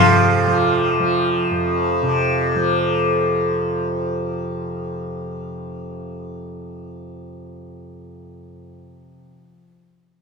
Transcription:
0.00 1.50 F2 medium
0.00 2.03 C3 medium
0.00 0.47 F3 medium
0.00 1.32 F3 medium
0.47 0.99 F3 medium
0.99 2.55 F3 medium
1.51 8.66 F2 medium
2.03 9.18 C3 medium
2.55 9.56 F3 medium

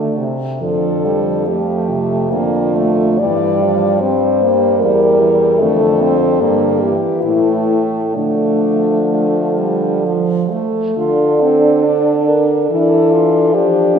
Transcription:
0.00 0.19 D3 soft
0.00 0.24 D3 soft
0.00 0.24 A3 soft
0.00 0.17 F#4 soft
0.18 0.61 C3 soft
0.61 3.16 F2 soft
0.61 1.43 D3 soft
0.61 1.07 F3 soft
0.61 1.50 A4 medium
1.05 1.47 G3 soft
1.48 1.91 F3 soft
1.48 2.33 A3 soft
1.48 2.32 G4 medium
1.90 2.33 C3 soft
2.31 3.20 D3 soft
2.31 2.77 A#3 soft
2.31 3.20 F4 medium
2.75 3.20 A3 soft
3.19 4.83 G2 medium
3.19 3.63 E3 soft
3.19 4.03 G3 soft
3.19 4.02 D5 medium
3.62 4.03 F3 soft
4.00 4.80 G3 soft
4.00 4.44 C4 soft
4.00 4.79 C5 medium
4.43 4.83 A#3 soft
4.79 5.62 E2 soft
4.79 5.22 G3 soft
4.79 5.64 G3 soft
4.79 5.61 A#4 medium
5.20 5.62 E3 medium
5.60 6.42 F2 medium
5.60 6.40 D3 soft
5.60 6.03 A3 soft
5.60 6.82 A4 medium
6.02 6.43 C4 soft
6.41 6.96 G2 soft
6.41 6.84 D3 soft
6.41 6.96 A#3 soft
6.80 7.84 E3 soft
6.80 7.24 G4 medium
7.23 8.18 A2 soft
7.23 8.12 A3 soft
7.23 7.83 E4 medium
8.14 10.64 D3 soft
8.14 10.60 F3 soft
8.14 9.00 A3 soft
8.14 10.01 D4 medium
9.10 9.59 A3 soft
9.58 10.07 G3 soft
10.06 10.53 F3 soft
10.52 10.97 A3 soft
10.52 12.29 A4 medium
10.97 12.66 D3 medium
10.97 12.67 D4 medium
10.97 11.43 F4 medium
11.41 11.86 C4 soft
11.85 12.70 D4 soft
12.28 12.68 A#4 medium
12.69 13.56 E3 soft
12.69 13.53 D4 soft
12.69 13.13 E4 medium
12.69 13.56 A4 medium
13.12 13.56 F4 medium
13.54 13.99 F3 medium
13.54 13.99 D4 medium
13.54 13.98 D4 medium
13.54 13.99 G4 medium

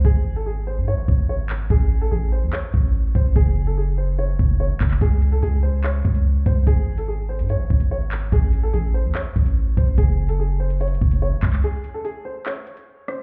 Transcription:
0.05 0.79 G#1 loud
0.05 0.34 G#4 loud
0.05 kick loud
0.36 0.45 A4 medium
0.46 0.64 G#4 medium
0.67 0.85 C5 medium
0.77 0.94 G#2 loud
0.88 1.27 C#5 medium
0.93 1.07 G#1 loud
1.08 1.68 G#1 loud
1.08 kick medium
1.29 1.68 C#5 medium
1.50 clap loud
1.70 2.10 A1 loud
1.70 2.00 G#4 loud
1.70 kick loud
2.01 2.10 A4 medium
2.11 2.44 A1 loud
2.11 2.29 G#4 medium
2.32 2.50 C5 medium
2.43 2.53 E2 loud
2.53 3.11 C#5 medium
2.53 clap loud
2.74 3.14 A1 loud
2.74 kick medium
3.15 3.35 A1 loud
3.15 3.33 C5 medium
3.15 kick loud
3.36 4.35 F#1 loud
3.36 3.65 G#4 loud
3.36 kick loud
3.67 3.76 A4 medium
3.78 3.95 G#4 medium
3.98 4.16 C5 medium
4.19 4.57 C#5 medium
4.39 4.72 F#1 loud
4.39 kick medium
4.60 4.99 C#5 medium
4.70 4.80 A1 loud
4.81 5.00 F#1 loud
4.81 kick loud
4.81 clap loud
4.91 clap medium
5.01 5.34 C#2 loud
5.01 5.31 G#4 loud
5.01 kick loud
5.01 closed hi-hat medium
5.22 closed hi-hat medium
5.32 5.42 C2 loud
5.32 5.41 A4 medium
5.42 6.02 C#2 loud
5.42 5.60 G#4 loud
5.42 closed hi-hat medium
5.63 5.81 C5 medium
5.84 6.43 C#5 medium
5.84 clap loud
6.05 6.45 C#2 loud
6.05 kick medium
6.05 closed hi-hat medium
6.15 closed hi-hat medium
6.46 6.66 C#2 loud
6.46 6.64 C5 medium
6.46 kick loud
6.46 closed hi-hat medium
6.67 7.41 G#1 loud
6.67 6.96 G#4 loud
6.67 kick loud
6.67 closed hi-hat medium
6.98 7.07 A4 medium
6.98 closed hi-hat medium
7.08 7.26 G#4 medium
7.29 7.47 C5 medium
7.39 7.56 G#2 loud
7.39 closed hi-hat medium
7.49 7.89 C#5 medium
7.49 closed hi-hat medium
7.55 7.70 G#1 loud
7.70 8.30 G#1 loud
7.70 kick medium
7.80 closed hi-hat medium
7.91 8.30 C#5 medium
8.12 clap loud
8.12 closed hi-hat medium
8.32 8.72 A1 loud
8.32 8.62 G#4 loud
8.32 kick loud
8.32 closed hi-hat medium
8.53 closed hi-hat medium
8.63 8.72 A4 medium
8.73 9.06 A1 loud
8.73 8.91 G#4 medium
8.73 closed hi-hat medium
8.94 9.12 C5 medium
9.05 9.15 E2 medium
9.15 9.73 C#5 medium
9.15 clap loud
9.36 9.76 A1 loud
9.36 kick medium
9.36 closed hi-hat medium
9.46 closed hi-hat medium
9.77 9.97 A1 loud
9.77 9.95 C5 medium
9.77 kick loud
9.77 closed hi-hat medium
9.98 10.97 F#1 loud
9.98 10.27 G#4 loud
9.98 kick loud
9.98 closed hi-hat medium
10.29 10.38 A4 medium
10.29 closed hi-hat medium
10.39 10.57 G#4 medium
10.60 10.78 C5 medium
10.70 closed hi-hat medium
10.81 11.20 C#5 medium
10.81 closed hi-hat medium
10.88 closed hi-hat medium
10.94 closed hi-hat medium
11.01 11.34 F#1 loud
11.01 kick medium
11.11 closed hi-hat medium
11.22 11.61 C#5 medium
11.32 11.42 A1 loud
11.43 11.63 C#2 loud
11.43 kick loud
11.43 clap loud
11.43 closed hi-hat medium
11.53 clap medium
11.63 11.93 G#4 loud
11.63 closed hi-hat medium
11.84 closed hi-hat medium
11.94 12.03 A4 medium
12.05 12.22 G#4 loud
12.05 closed hi-hat medium
12.25 12.43 C5 medium
12.46 13.05 C#5 medium
12.46 clap loud
12.67 closed hi-hat medium
12.77 closed hi-hat medium
13.08 13.23 C5 medium
13.08 cross-stick loud
13.08 closed hi-hat medium

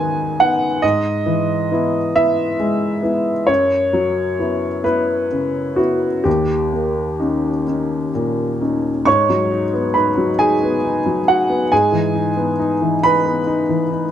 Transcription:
0.00 0.79 G#2 soft
0.00 0.65 D#3 soft
0.00 0.85 F#3 soft
0.00 0.41 B3 soft
0.00 0.41 D#4 soft
0.00 0.85 B4 medium
0.00 0.39 G#5 medium
0.40 0.80 B3 soft
0.40 0.80 D#4 soft
0.40 0.83 F#5 medium
0.82 3.45 G#2 soft
0.82 2.15 D#5 medium
1.26 1.97 E3 soft
1.71 2.11 B3 soft
1.71 2.12 E4 soft
2.15 2.55 B3 soft
2.15 2.55 E4 soft
2.15 3.49 E5 medium
2.60 3.31 G#3 soft
3.02 3.44 B3 soft
3.02 3.44 E4 soft
3.47 6.21 F#2 soft
3.47 4.84 C#5 medium
3.93 4.67 F#3 soft
4.39 4.81 B3 soft
4.39 4.81 E4 soft
4.84 5.27 B3 soft
4.84 5.27 E4 soft
4.84 5.78 B4 medium
5.31 6.07 C#3 soft
5.76 6.21 B3 soft
5.76 6.21 E4 soft
5.76 6.25 F#4 medium
6.24 9.02 D#2 soft
6.24 7.66 G4 medium
6.73 7.48 A#3 soft
7.20 7.63 C#4 soft
7.20 7.63 D#4 soft
7.67 8.10 C#4 soft
7.67 8.10 D#4 soft
8.15 8.89 A#2 soft
8.62 9.03 C#4 soft
8.62 9.03 D#4 soft
9.05 11.67 G#2 soft
9.05 9.91 C#5 medium
9.05 9.94 C#6 medium
9.29 9.64 F#3 soft
9.51 9.86 D#4 soft
9.73 10.08 B3 soft
9.94 10.30 D#4 soft
9.94 10.36 B4 soft
9.94 10.38 B5 medium
10.17 10.52 F#3 soft
10.39 10.74 D#4 soft
10.39 11.24 G#4 soft
10.39 11.27 G#5 medium
10.63 10.97 B3 soft
10.84 11.19 D#4 soft
11.06 11.41 F#3 soft
11.28 11.63 D#4 soft
11.28 11.69 F#4 soft
11.28 11.72 F#5 medium
11.50 11.71 B3 soft
11.72 14.12 G#2 soft
11.72 13.01 G#4 soft
11.72 13.04 G#5 medium
11.92 12.28 E3 soft
12.15 12.51 D#4 soft
12.37 12.73 B3 soft
12.59 12.95 D#4 soft
12.81 13.17 E3 soft
13.03 13.39 D#4 soft
13.03 14.12 B4 medium
13.03 14.12 B5 medium
13.25 13.61 B3 soft
13.47 13.83 D#4 soft
13.69 14.05 E3 soft
13.91 14.12 D#4 soft

